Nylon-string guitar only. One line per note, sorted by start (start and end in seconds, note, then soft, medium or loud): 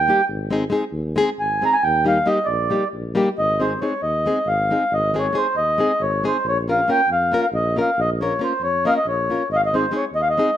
0.08 0.20 G3 medium
0.08 0.20 A#3 medium
0.08 0.20 D#4 medium
0.08 0.21 G4 medium
0.50 0.63 G#3 medium
0.50 0.63 C4 medium
0.50 0.64 D#4 medium
0.50 0.64 G#4 medium
0.70 0.82 G#3 medium
0.70 0.83 C4 medium
0.70 0.83 D#4 medium
0.70 0.84 G#4 medium
1.16 1.28 G#3 medium
1.16 1.29 C4 medium
1.16 1.29 D#4 medium
1.16 1.29 G#4 loud
1.62 1.74 G#3 medium
1.62 1.74 C4 medium
1.62 1.75 D#4 medium
1.62 1.75 G#4 medium
2.04 2.17 G3 medium
2.04 2.17 A#3 medium
2.04 2.18 D#4 medium
2.04 2.18 G4 medium
2.26 2.38 G3 medium
2.26 2.38 A#3 medium
2.26 2.38 D#4 medium
2.26 2.38 G4 medium
2.70 2.83 G3 medium
2.70 2.83 A#3 medium
2.70 2.83 D#4 medium
2.70 2.83 G4 medium
3.15 3.28 G3 medium
3.15 3.28 A#3 medium
3.15 3.28 D#4 medium
3.15 3.29 G4 medium
3.60 3.72 G#3 medium
3.60 3.72 C4 medium
3.60 3.72 D#4 medium
3.60 3.73 G#4 medium
3.82 3.93 G#3 medium
3.82 3.93 C4 medium
3.82 3.93 D#4 medium
3.82 3.93 G#4 medium
4.26 4.38 G#3 medium
4.26 4.38 C4 medium
4.26 4.38 D#4 medium
4.26 4.38 G#4 medium
4.71 4.83 G#3 medium
4.71 4.83 C4 medium
4.71 4.83 D#4 medium
4.71 4.84 G#4 medium
5.14 5.26 G#3 medium
5.14 5.26 C4 medium
5.14 5.26 D#4 medium
5.14 5.27 G#4 medium
5.33 5.45 G#3 medium
5.33 5.46 C4 medium
5.33 5.46 D#4 medium
5.33 5.46 G#4 medium
5.78 5.90 G#3 medium
5.78 5.91 C4 medium
5.78 5.91 D#4 medium
5.78 5.92 G#4 medium
6.24 6.36 G#3 medium
6.24 6.36 C4 medium
6.24 6.36 D#4 medium
6.24 6.37 G#4 medium
6.68 6.79 A#3 medium
6.68 6.80 C#4 medium
6.68 6.80 F4 medium
6.68 6.80 A#4 medium
6.88 6.99 A#3 medium
6.88 7.00 C#4 medium
6.88 7.00 F4 medium
6.88 7.00 A#4 medium
7.32 7.44 A#3 medium
7.32 7.44 C#4 medium
7.32 7.44 F4 medium
7.32 7.45 A#4 medium
7.76 7.89 A#3 medium
7.76 7.89 C#4 medium
7.76 7.89 F4 medium
7.76 7.90 A#4 medium
8.21 8.32 A#3 medium
8.21 8.32 C#4 medium
8.21 8.33 F4 medium
8.21 8.33 A#4 medium
8.39 8.51 A#3 medium
8.39 8.52 C#4 medium
8.39 8.52 F4 medium
8.39 8.52 A#4 medium
8.85 8.97 A#3 medium
8.85 8.97 C#4 medium
8.85 8.97 F4 medium
8.85 8.98 A#4 medium
9.30 9.42 A#3 medium
9.30 9.42 C#4 soft
9.30 9.42 F4 medium
9.30 9.43 A#4 medium
9.74 9.85 G#3 medium
9.74 9.85 C4 medium
9.74 9.85 D#4 medium
9.74 9.86 G#4 medium
9.91 10.04 G#3 medium
9.91 10.04 C4 medium
9.91 10.04 D#4 medium
9.91 10.04 G#4 medium
10.37 10.49 G#3 medium
10.37 10.49 C4 medium
10.37 10.50 D#4 medium
10.37 10.50 G#4 medium